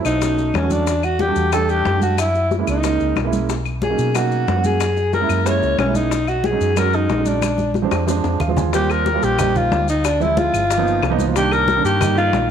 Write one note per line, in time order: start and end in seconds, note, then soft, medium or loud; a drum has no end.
0.00 0.13 F#3 medium
0.00 0.14 A3 medium
0.00 0.14 C4 medium
0.00 0.14 E4 medium
0.05 0.51 B1 medium
0.05 0.57 D#4 medium
0.05 high bongo soft
0.05 high conga soft
0.05 claves medium
0.05 maracas medium
0.20 0.50 F#3 medium
0.20 0.50 A3 medium
0.20 0.50 C#4 medium
0.20 0.50 D#4 medium
0.20 high bongo medium
0.20 high conga soft
0.20 maracas medium
0.38 high bongo soft
0.38 high conga soft
0.38 maracas soft
0.54 1.30 E2 medium
0.54 0.73 C#4 medium
0.54 high bongo medium
0.54 low bongo medium
0.54 high conga medium
0.54 claves medium
0.54 maracas soft
0.62 0.87 F#3 medium
0.62 0.87 A3 medium
0.62 0.87 C#4 medium
0.62 0.88 F#4 medium
0.70 1.06 D4 medium
0.70 high conga medium
0.70 maracas medium
0.87 high bongo medium
0.87 high conga soft
0.87 maracas medium
1.03 1.22 F#4 medium
1.03 high conga soft
1.03 claves medium
1.03 maracas soft
1.19 1.53 G4 medium
1.19 high bongo medium
1.19 high conga medium
1.19 maracas soft
1.27 1.45 G3 medium
1.27 1.45 A3 medium
1.27 1.45 D4 medium
1.27 1.46 F#4 medium
1.36 1.82 E2 medium
1.36 high conga soft
1.36 maracas medium
1.52 1.81 G3 medium
1.52 1.81 A3 medium
1.52 1.81 D4 medium
1.52 1.82 G4 medium
1.52 1.71 A4 medium
1.52 high bongo medium
1.52 high conga soft
1.52 claves medium
1.52 maracas medium
1.69 2.02 G4 medium
1.69 high conga soft
1.69 maracas soft
1.85 2.62 F#2 medium
1.85 high bongo medium
1.85 low bongo medium
1.85 high conga medium
1.85 maracas soft
1.93 2.18 G3 medium
1.93 2.18 A3 medium
1.93 2.18 D4 medium
1.93 2.19 F#4 medium
2.01 2.21 F#4 medium
2.01 high conga medium
2.01 maracas medium
2.18 2.52 E4 medium
2.18 high bongo medium
2.18 high conga soft
2.18 claves medium
2.18 maracas medium
2.34 high bongo soft
2.34 high conga soft
2.34 maracas soft
2.51 high bongo medium
2.51 high conga medium
2.51 maracas soft
2.58 2.76 G#3 medium
2.58 2.76 A#3 medium
2.58 2.77 C#4 medium
2.58 2.77 E4 medium
2.67 2.98 C#2 medium
2.67 3.30 D#4 medium
2.67 high bongo soft
2.67 high conga soft
2.67 claves medium
2.67 maracas medium
2.83 3.12 G#3 medium
2.83 3.12 A#3 medium
2.83 3.13 C#4 medium
2.83 3.13 D#4 medium
2.83 high bongo medium
2.83 high conga soft
2.83 maracas medium
3.00 3.16 C#2 medium
3.00 high bongo soft
3.00 high conga soft
3.00 maracas soft
3.16 3.93 B1 medium
3.16 high bongo medium
3.16 low bongo medium
3.16 high conga medium
3.16 claves medium
3.16 maracas soft
3.24 3.49 G#3 medium
3.24 3.49 A#3 medium
3.24 3.50 C#4 medium
3.24 3.50 E4 medium
3.33 high conga medium
3.33 maracas medium
3.49 high bongo medium
3.49 high conga soft
3.49 maracas medium
3.65 high conga soft
3.65 claves medium
3.65 maracas soft
3.82 4.17 G#4 medium
3.82 high bongo medium
3.82 high conga medium
3.82 maracas soft
3.90 4.07 F#3 medium
3.90 4.07 A#3 medium
3.90 4.08 C#4 medium
3.90 4.08 D#4 medium
3.98 4.44 B2 medium
3.98 high conga soft
3.98 maracas medium
4.14 4.43 F#3 medium
4.14 4.43 A#3 medium
4.14 4.44 C#4 medium
4.14 4.44 D#4 medium
4.14 4.67 F#4 medium
4.14 high bongo medium
4.14 high conga soft
4.14 claves medium
4.14 maracas medium
4.31 high conga soft
4.31 maracas soft
4.47 5.24 F#2 medium
4.47 high bongo medium
4.47 low bongo medium
4.47 high conga medium
4.47 maracas soft
4.55 4.80 F#3 medium
4.55 4.80 A#3 medium
4.55 4.81 C#4 medium
4.55 4.81 F#4 medium
4.64 5.14 G#4 medium
4.64 high conga medium
4.64 maracas medium
4.80 high bongo medium
4.80 high conga soft
4.80 claves medium
4.80 maracas medium
4.97 high bongo soft
4.97 high conga soft
4.97 maracas soft
5.13 5.48 A#4 medium
5.13 high bongo medium
5.13 high conga medium
5.13 maracas soft
5.20 5.38 G#3 medium
5.20 5.38 A#3 medium
5.20 5.39 C#4 medium
5.20 5.39 E4 medium
5.29 5.60 F#2 medium
5.29 high bongo soft
5.29 high conga soft
5.29 claves medium
5.29 maracas medium
5.45 5.74 G#3 medium
5.45 5.74 A#3 medium
5.45 5.75 C#4 medium
5.45 5.75 E4 medium
5.45 5.79 C#5 medium
5.45 high bongo medium
5.45 high conga soft
5.45 maracas medium
5.62 5.77 C#2 medium
5.62 high bongo soft
5.62 high conga soft
5.62 maracas soft
5.78 6.55 B1 medium
5.78 5.97 C#4 medium
5.78 high bongo medium
5.78 low bongo medium
5.78 high conga medium
5.78 claves medium
5.78 maracas soft
5.86 6.11 G#3 medium
5.86 6.11 A#3 medium
5.86 6.11 C#4 medium
5.86 6.12 E4 medium
5.95 6.30 D#4 medium
5.95 high conga medium
5.95 maracas medium
6.11 high bongo medium
6.11 high conga soft
6.11 maracas medium
6.27 6.47 F#4 medium
6.27 high conga soft
6.27 claves medium
6.27 maracas soft
6.44 6.80 G#4 medium
6.44 high bongo medium
6.44 high conga medium
6.44 maracas soft
6.51 6.69 F#3 medium
6.51 6.69 G#3 medium
6.51 6.70 C#4 medium
6.51 6.70 D#4 medium
6.61 7.06 F#2 medium
6.61 high conga soft
6.61 maracas medium
6.76 7.05 F#3 medium
6.76 7.05 G#3 medium
6.76 7.06 C#4 medium
6.76 7.06 F#4 medium
6.76 6.96 A#4 medium
6.76 high bongo medium
6.76 high conga soft
6.76 claves medium
6.76 maracas medium
6.93 7.29 D#4 medium
6.93 high conga soft
6.93 maracas soft
7.09 7.86 A#1 medium
7.09 high bongo medium
7.09 low bongo medium
7.09 high conga medium
7.09 maracas soft
7.17 7.42 F#3 medium
7.17 7.42 G#3 medium
7.17 7.42 C#4 medium
7.17 7.43 D#4 medium
7.25 7.76 D4 medium
7.25 high conga medium
7.25 maracas medium
7.41 high bongo medium
7.41 high conga medium
7.41 claves medium
7.41 maracas medium
7.58 high bongo soft
7.58 high conga medium
7.58 maracas soft
7.74 high bongo medium
7.74 high conga medium
7.74 maracas soft
7.82 8.00 F3 medium
7.82 8.00 G#3 medium
7.82 8.01 C4 medium
7.82 8.01 D4 medium
7.91 8.22 F2 medium
7.91 high bongo medium
7.91 claves medium
7.91 maracas medium
8.07 8.36 F3 medium
8.07 8.36 G#3 medium
8.07 8.37 C4 medium
8.07 8.37 D4 medium
8.07 high bongo medium
8.07 maracas medium
8.24 8.39 F2 medium
8.24 low bongo medium
8.24 maracas soft
8.40 9.17 D#2 medium
8.40 8.56 F5 medium
8.40 low conga medium
8.40 claves medium
8.40 maracas soft
8.48 8.73 F3 medium
8.48 8.73 G#3 medium
8.48 8.72 C4 medium
8.48 8.73 F4 medium
8.56 8.72 G#5 medium
8.56 low bongo loud
8.56 low conga medium
8.56 maracas medium
8.73 9.02 G3 medium
8.73 9.02 A#3 medium
8.73 9.02 C4 medium
8.73 9.03 F4 medium
8.73 8.92 G4 medium
8.73 high bongo medium
8.73 high conga soft
8.73 maracas medium
8.90 9.25 A#4 medium
8.90 high conga soft
8.90 claves medium
8.90 maracas soft
9.06 high bongo medium
9.06 high conga medium
9.06 maracas soft
9.14 9.31 G3 medium
9.14 9.31 A#3 medium
9.14 9.32 C4 medium
9.14 9.32 F4 medium
9.22 9.68 A#1 medium
9.22 9.58 G4 medium
9.22 high conga soft
9.22 maracas medium
9.38 9.85 G3 medium
9.38 9.85 A#3 medium
9.38 9.85 C4 medium
9.38 9.85 D#4 medium
9.38 high bongo medium
9.38 high conga soft
9.38 low conga medium
9.38 claves medium
9.38 maracas medium
9.55 9.89 F4 medium
9.55 high conga soft
9.55 low conga medium
9.55 maracas soft
9.71 10.48 D2 medium
9.71 high bongo medium
9.71 low bongo medium
9.71 high conga medium
9.71 maracas soft
9.88 10.07 D#4 medium
9.88 maracas medium
10.04 10.23 D4 medium
10.04 high bongo medium
10.04 high conga soft
10.04 claves medium
10.04 maracas medium
10.20 10.60 F3 medium
10.20 10.61 G#3 medium
10.20 10.61 C4 medium
10.20 10.61 E4 medium
10.20 10.39 E4 medium
10.20 high bongo soft
10.20 high conga soft
10.20 maracas soft
10.37 11.19 F4 medium
10.37 high bongo medium
10.37 high conga loud
10.37 maracas soft
10.53 10.99 G1 medium
10.53 high bongo soft
10.53 high conga soft
10.53 claves medium
10.53 maracas medium
10.70 high bongo medium
10.70 high conga soft
10.70 maracas medium
10.77 11.01 F3 medium
10.77 11.01 A#3 medium
10.77 11.01 B3 medium
10.77 11.01 D#4 medium
10.87 high conga soft
10.87 maracas soft
11.03 11.79 C2 medium
11.03 high bongo medium
11.03 low bongo medium
11.03 high conga soft
11.03 claves medium
11.03 maracas soft
11.10 11.22 F3 loud
11.10 11.22 A#3 medium
11.10 11.22 B3 medium
11.10 11.23 D#4 loud
11.19 high bongo soft
11.19 high conga medium
11.19 maracas medium
11.26 11.32 F3 medium
11.26 11.33 A#3 medium
11.26 11.33 B3 medium
11.26 11.33 F4 medium
11.35 11.64 D#3 medium
11.35 11.64 G3 medium
11.35 11.64 A#3 medium
11.35 11.64 D4 medium
11.35 11.54 G4 medium
11.35 high bongo medium
11.35 high conga soft
11.35 maracas medium
11.51 11.84 A#4 loud
11.51 high conga soft
11.51 claves medium
11.51 maracas soft
11.68 high bongo medium
11.68 high conga medium
11.68 maracas soft
11.76 11.93 D#3 medium
11.76 11.93 G3 medium
11.76 11.93 A#3 medium
11.76 11.94 D4 medium
11.84 12.30 G2 medium
11.84 12.15 G4 medium
11.84 high conga soft
11.84 maracas medium
12.00 12.46 D#3 medium
12.00 12.46 G3 medium
12.00 12.46 A#3 medium
12.00 12.47 D#4 medium
12.00 high bongo medium
12.00 high conga soft
12.00 low conga medium
12.00 claves medium
12.00 maracas medium
12.17 12.48 F4 loud
12.17 high conga soft
12.17 maracas soft
12.33 12.51 A#1 medium
12.33 high bongo medium
12.33 low bongo medium
12.33 high conga medium
12.33 maracas soft